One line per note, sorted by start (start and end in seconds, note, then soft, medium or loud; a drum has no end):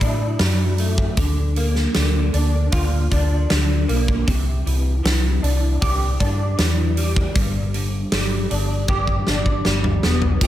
0.00 0.35 A2 medium
0.00 0.39 F#3 medium
0.00 2.33 D4 medium
0.00 1.18 E4 medium
0.00 kick medium
0.00 open hi-hat soft
0.39 1.08 F#2 medium
0.39 1.18 F#3 medium
0.39 snare loud
0.39 open hi-hat medium
0.78 1.18 A3 medium
0.78 open hi-hat soft
0.98 kick medium
1.17 1.86 D2 medium
1.17 1.94 D3 medium
1.17 kick loud
1.17 open hi-hat medium
1.56 3.50 A#3 medium
1.56 open hi-hat soft
1.75 snare soft
1.94 2.29 D2 medium
1.94 3.49 D3 medium
1.94 snare loud
1.94 open hi-hat medium
2.33 2.68 D2 medium
2.33 3.11 D4 medium
2.33 open hi-hat soft
2.72 3.06 D2 medium
2.72 4.27 F4 medium
2.72 kick loud
2.72 open hi-hat medium
3.11 3.45 D2 medium
3.11 4.30 D4 medium
3.11 kick medium
3.11 open hi-hat soft
3.50 3.84 D2 medium
3.50 4.27 D3 medium
3.50 snare loud
3.50 open hi-hat medium
3.88 4.23 B1 medium
3.88 4.27 A#3 medium
3.88 open hi-hat soft
4.08 kick medium
4.27 4.61 C2 medium
4.27 6.20 C3 medium
4.27 kick loud
4.27 open hi-hat medium
4.66 5.00 C2 medium
4.66 5.02 E3 medium
4.66 open hi-hat soft
5.04 5.38 C2 medium
5.04 6.57 E3 medium
5.04 snare loud
5.04 open hi-hat medium
5.42 5.76 C2 medium
5.42 6.19 D4 medium
5.42 open hi-hat soft
5.81 6.15 C2 medium
5.81 8.89 G4 medium
5.81 kick loud
5.81 open hi-hat medium
6.20 6.54 G2 medium
6.20 7.35 D4 medium
6.20 kick medium
6.20 open hi-hat soft
6.58 7.26 E2 medium
6.58 7.35 E3 medium
6.58 snare medium
6.58 open hi-hat medium
6.97 8.12 G3 medium
6.97 open hi-hat soft
7.16 kick medium
7.35 8.02 G1 medium
7.35 9.27 G2 medium
7.35 kick loud
7.35 open hi-hat medium
7.74 9.65 D3 medium
7.74 open hi-hat soft
8.12 8.45 G1 medium
8.12 9.65 G3 medium
8.12 snare loud
8.12 open hi-hat medium
8.50 8.84 G1 medium
8.50 9.26 D4 medium
8.50 open hi-hat soft
8.88 9.22 G1 medium
8.88 10.42 G4 medium
8.88 kick loud
8.88 high tom medium
9.07 kick medium
9.27 9.61 G1 medium
9.27 10.42 D4 medium
9.27 snare medium
9.46 kick medium
9.65 9.99 G1 medium
9.65 10.41 G3 medium
9.65 snare medium
9.84 mid tom medium
10.03 10.37 E1 medium
10.03 10.42 B3 medium
10.03 snare medium
10.22 floor tom medium
10.41 10.47 F1 medium
10.41 10.47 F3 medium
10.41 10.47 A3 medium
10.41 10.47 C4 medium
10.41 10.47 G4 medium
10.41 kick loud
10.41 crash loud